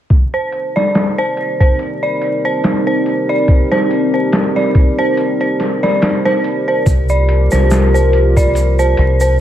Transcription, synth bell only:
0.34 0.52 C5 medium
0.76 0.94 D5 medium
1.18 1.58 C5 medium
1.60 1.79 C5 medium
2.03 2.21 D5 medium
2.45 2.85 C5 medium
2.87 3.05 C5 medium
3.29 3.47 D5 medium
3.72 4.12 C5 medium
4.14 4.32 C5 medium
4.56 4.74 D5 medium
4.99 5.39 C5 medium
5.41 5.59 C5 medium
5.83 6.01 D5 medium
6.25 6.65 C5 medium
6.68 6.86 C5 medium
7.10 7.28 D5 medium
7.52 7.92 C5 medium
7.94 8.12 C5 medium
8.37 8.55 D5 medium
8.79 9.19 C5 medium
9.21 9.39 C5 medium

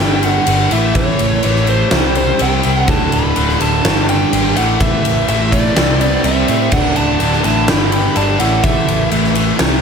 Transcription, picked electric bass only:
0.00 0.38 G1 loud
0.48 0.67 G1 loud
0.72 0.91 A1 loud
0.95 1.15 A1 loud
1.20 1.39 A1 medium
1.45 1.83 A1 medium
1.92 2.30 C2 loud
2.41 2.60 C2 loud
2.65 2.84 C2 loud
2.88 3.07 D1 loud
3.13 3.32 D1 loud
3.37 3.56 D1 loud
3.61 3.80 D1 medium
3.85 4.23 G1 loud
4.33 4.52 G#1 loud
4.57 4.76 A1 medium
4.81 5.00 A1 loud
5.05 5.24 A1 medium
5.29 5.67 A1 loud
5.77 6.15 C2 medium
6.24 6.43 C2 loud
6.49 6.68 A2 medium
6.72 6.91 D1 medium
6.97 7.16 D1 medium
7.20 7.39 D1 loud
7.44 7.70 A1 medium
7.69 8.07 G1 loud
8.16 8.35 G1 loud
8.40 8.59 A1 medium
8.64 8.83 A1 medium
8.88 9.07 A1 medium
9.12 9.50 A1 medium
9.60 9.81 C2 loud

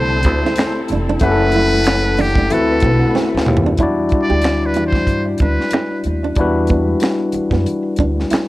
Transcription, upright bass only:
0.00 0.26 C2 medium
0.26 0.41 D2 medium
0.91 1.18 F1 medium
1.22 2.46 F#1 medium
2.51 2.79 D2 medium
2.83 2.99 B1 loud
3.35 3.48 D2 medium
3.48 3.75 D#2 medium
3.79 4.07 E2 medium
4.30 4.77 D2 medium
4.77 5.08 E2 medium
5.08 5.36 G2 medium
5.41 5.57 D2 medium
6.06 6.33 D#2 medium
6.37 6.94 E2 medium
7.35 muted upright bass stroke soft
7.52 7.64 F#2 medium
8.00 8.27 D2 medium
8.32 muted upright bass stroke soft

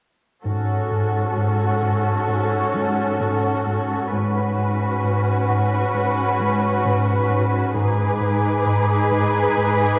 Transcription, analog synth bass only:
0.45 0.73 G#2 medium
0.91 1.19 G#2 soft
1.37 1.65 G#2 soft
1.83 2.10 G#2 medium
2.28 2.56 G#2 soft
2.74 3.02 G#3 soft
3.20 3.47 G#2 medium
3.66 3.94 G#2 soft
4.12 4.40 G#2 medium
4.58 4.85 G#2 soft
5.04 5.31 G#2 soft
5.50 5.77 G#2 medium
5.95 6.22 G#2 soft
6.40 6.67 G#3 soft
6.85 7.12 G#2 medium
7.30 7.57 G#2 soft
7.75 8.02 G#2 medium
8.20 8.48 G#2 soft
8.66 8.93 G#2 soft
9.12 9.39 G#2 medium
9.57 9.85 G#2 medium

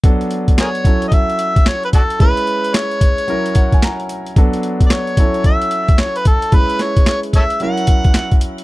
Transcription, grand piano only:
0.04 0.83 F#3 medium
0.04 0.85 B3 medium
0.04 0.85 D4 medium
0.04 0.85 A4 medium
0.84 2.17 F#3 medium
0.84 2.17 C#4 medium
0.84 2.18 E4 medium
0.84 2.18 A4 medium
2.19 3.26 G#3 medium
2.19 3.26 C#4 medium
2.19 3.27 E4 medium
2.19 3.27 B4 medium
3.27 4.34 F#3 medium
3.27 4.34 C#4 medium
3.27 4.35 E4 medium
3.27 4.35 A#4 medium
3.56 3.72 F#5 medium
3.74 3.82 G#5 medium
3.84 4.33 A#5 medium
4.37 5.16 F#3 medium
4.37 5.18 B3 medium
4.37 5.18 D4 medium
4.37 5.18 A4 medium
5.17 6.50 F#3 medium
5.17 6.50 C#4 medium
5.17 6.51 E4 medium
5.17 6.51 A4 medium
6.52 7.58 G#3 medium
6.52 7.58 C#4 medium
6.52 7.59 E4 medium
6.52 7.59 B4 medium
7.60 8.64 F#3 medium
7.60 8.64 C#4 medium
7.60 8.64 E4 medium
7.60 8.64 A#4 medium

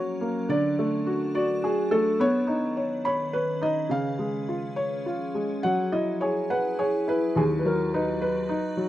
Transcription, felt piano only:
0.00 0.19 A#3 medium
0.00 0.49 F#4 medium
0.00 0.51 C#5 medium
0.21 0.49 A#3 medium
0.49 1.63 D3 medium
0.49 1.33 D5 medium
0.79 1.90 A3 medium
1.06 1.34 F#4 medium
1.35 1.61 F#4 medium
1.35 2.20 D5 medium
1.63 2.20 F#4 medium
1.63 1.93 G#4 medium
1.91 2.20 A3 medium
1.91 2.21 A4 medium
2.20 3.33 B3 medium
2.20 2.75 C#5 loud
2.47 3.60 D#4 medium
2.77 3.04 C#5 medium
3.05 3.33 C#5 medium
3.05 3.90 B5 medium
3.33 3.63 B4 medium
3.33 3.91 C#5 medium
3.61 3.90 D#4 medium
3.61 3.91 D#5 medium
3.90 5.05 C#3 medium
3.90 5.31 F5 medium
4.19 5.33 G#3 medium
4.49 5.04 F4 medium
4.76 5.64 C#5 medium
5.06 5.64 F4 medium
5.35 5.64 G#3 medium
5.63 6.79 F#3 medium
5.63 5.90 F#5 medium
5.92 7.06 E4 medium
5.92 6.19 D#5 medium
6.21 6.77 G#4 medium
6.21 6.51 C#5 medium
6.50 6.77 B4 medium
6.50 7.36 F#5 medium
6.79 7.36 G#4 medium
6.79 7.05 C#5 medium
7.08 7.36 E4 medium
7.08 7.38 B4 medium
7.36 8.50 D#2 medium
7.36 7.42 G#4 medium
7.59 7.65 B4 medium
7.65 8.75 F#3 medium
7.65 7.92 A#4 medium
7.94 8.48 D#4 medium
7.94 8.20 B4 medium
8.22 8.89 B4 medium
8.49 8.89 D#4 medium
8.77 8.89 F#3 medium

